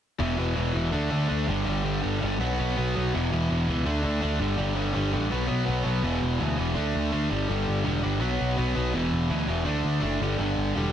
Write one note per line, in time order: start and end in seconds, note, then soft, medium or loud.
0.19 0.37 E1 medium
0.19 0.35 E2 medium
0.19 0.36 B2 medium
0.19 0.37 E3 medium
0.37 0.56 E1 medium
0.37 0.54 E2 medium
0.37 0.54 B2 medium
0.37 0.55 E3 medium
0.55 0.74 E1 medium
0.55 0.72 E2 medium
0.55 0.73 B2 medium
0.55 0.74 E3 medium
0.74 0.92 E1 medium
0.74 0.91 E2 medium
0.74 0.91 B2 medium
0.74 0.92 E3 medium
0.92 1.11 D2 medium
0.92 1.09 D3 medium
0.92 1.10 A3 medium
0.92 1.11 D4 medium
1.11 1.29 D2 medium
1.11 1.27 D3 medium
1.11 1.28 A3 medium
1.11 1.28 D4 medium
1.28 1.48 D2 medium
1.28 1.46 D3 medium
1.28 1.47 A3 medium
1.28 1.47 D4 medium
1.47 1.66 G1 medium
1.47 1.64 G2 medium
1.47 1.64 D3 medium
1.47 1.65 G3 loud
1.65 2.02 G1 medium
1.65 1.82 G2 medium
1.65 1.83 D3 medium
1.65 1.84 G3 medium
1.83 2.00 G2 medium
1.83 2.01 D3 medium
1.83 2.02 G3 medium
2.02 2.21 G1 medium
2.02 2.19 G2 medium
2.02 2.20 D3 medium
2.02 2.21 G3 medium
2.20 2.41 G1 medium
2.20 2.38 G2 medium
2.20 2.38 D3 medium
2.20 2.39 G3 medium
2.40 2.58 B1 medium
2.40 2.58 B2 loud
2.40 2.58 F#3 medium
2.40 2.58 B3 loud
2.59 2.76 B1 medium
2.59 2.75 B2 medium
2.59 2.76 F#3 medium
2.59 2.76 B3 medium
2.76 2.94 B1 medium
2.76 2.93 B2 medium
2.76 2.94 F#3 medium
2.76 2.95 B3 medium
2.94 3.13 B1 medium
2.94 3.11 B2 medium
2.94 3.12 F#3 medium
2.94 3.12 B3 medium
3.13 3.31 E1 medium
3.13 3.30 E2 medium
3.13 3.30 B2 medium
3.13 3.31 E3 loud
3.31 3.49 E1 medium
3.31 3.48 E2 medium
3.31 3.49 B2 medium
3.31 3.50 E3 medium
3.50 3.67 E1 medium
3.50 3.66 E2 medium
3.50 3.67 B2 medium
3.50 3.68 E3 medium
3.68 3.87 C#2 medium
3.68 3.84 E2 medium
3.68 3.85 B2 medium
3.68 3.85 E3 medium
3.86 4.03 D2 medium
3.86 4.02 D3 medium
3.86 4.03 A3 loud
3.86 4.03 D4 loud
4.03 4.22 D2 medium
4.03 4.20 D3 medium
4.03 4.21 A3 medium
4.03 4.21 D4 medium
4.21 4.39 D2 medium
4.21 4.39 D3 medium
4.21 4.39 A3 medium
4.21 4.39 D4 medium
4.40 4.57 G1 medium
4.40 4.55 G2 medium
4.40 4.56 D3 loud
4.40 4.57 G3 loud
4.57 4.93 G1 medium
4.57 4.74 G2 medium
4.57 4.74 D3 loud
4.57 4.75 G3 medium
4.75 4.92 G2 medium
4.75 4.93 D3 medium
4.75 4.94 G3 medium
4.94 5.12 G1 medium
4.94 5.11 G2 medium
4.94 5.12 D3 medium
4.94 5.12 G3 medium
5.12 5.31 A1 medium
5.12 5.30 G2 medium
5.12 5.30 D3 medium
5.12 5.30 G3 medium
5.30 5.49 B1 medium
5.30 5.46 B2 medium
5.30 5.46 F#3 medium
5.30 5.47 B3 loud
5.47 5.67 B1 medium
5.47 5.64 B2 medium
5.47 5.64 F#3 medium
5.47 5.65 B3 medium
5.65 5.84 B1 medium
5.65 5.82 B2 medium
5.65 5.83 F#3 medium
5.65 5.84 B3 medium
5.84 6.03 B1 medium
5.84 6.02 B2 medium
5.84 6.02 F#3 medium
5.84 6.02 B3 medium
6.03 6.19 E1 medium
6.03 6.38 E2 medium
6.03 6.39 B2 medium
6.03 6.39 E3 medium
6.22 6.38 E1 medium
6.39 6.56 D2 medium
6.39 6.56 E2 medium
6.39 6.56 B2 medium
6.39 6.58 E3 medium
6.58 6.74 E1 medium
6.58 6.75 E2 medium
6.58 6.74 B2 medium
6.58 6.75 E3 medium
6.74 6.92 D2 medium
6.74 7.11 D3 medium
6.74 7.11 A3 loud
6.74 7.12 D4 loud
6.95 7.11 D2 medium
7.12 7.29 D2 medium
7.12 7.28 D3 medium
7.12 7.29 A3 medium
7.12 7.30 D4 medium
7.29 7.46 G1 medium
7.29 7.47 G2 medium
7.29 7.48 D3 loud
7.29 7.49 G3 loud
7.49 7.65 G1 medium
7.49 7.83 G2 medium
7.49 7.84 D3 medium
7.49 7.84 G3 medium
7.68 7.83 G1 medium
7.84 8.01 E1 medium
7.84 8.02 G2 medium
7.84 8.02 D3 medium
7.84 8.03 G3 medium
8.03 8.21 G1 medium
8.03 8.20 G2 medium
8.03 8.20 D3 medium
8.03 8.20 G3 medium
8.20 8.37 B1 medium
8.20 8.55 B2 medium
8.20 8.57 F#3 loud
8.20 8.57 B3 medium
8.41 8.56 B1 medium
8.57 8.74 B1 medium
8.57 8.74 B2 medium
8.57 8.75 F#3 medium
8.57 8.75 B3 medium
8.75 8.94 B1 medium
8.75 8.93 B2 medium
8.75 8.93 F#3 medium
8.75 8.93 B3 medium
8.94 9.10 E1 medium
8.94 9.29 E2 medium
8.94 9.30 B2 medium
8.94 9.30 E3 loud
9.12 9.28 E1 medium
9.30 9.46 D2 medium
9.30 9.47 E2 medium
9.30 9.47 B2 medium
9.30 9.48 E3 medium
9.48 9.64 E1 medium
9.48 9.65 E2 medium
9.48 9.64 B2 medium
9.48 9.65 E3 medium
9.64 9.82 D2 medium
9.64 10.00 D3 medium
9.64 10.00 A3 loud
9.64 10.01 D4 loud
9.84 10.00 D2 medium
10.01 10.18 F#1 medium
10.01 10.19 D3 medium
10.01 10.19 A3 medium
10.01 10.20 D4 medium
10.20 10.36 G1 medium
10.20 10.37 G2 medium
10.20 10.38 D3 loud
10.20 10.38 G3 loud
10.38 10.55 G1 medium
10.38 10.74 G2 medium
10.38 10.75 D3 loud
10.38 10.76 G3 loud
10.57 10.73 G1 medium
10.75 10.91 E1 medium
10.75 10.92 G2 medium
10.75 10.92 D3 medium
10.75 10.92 G3 medium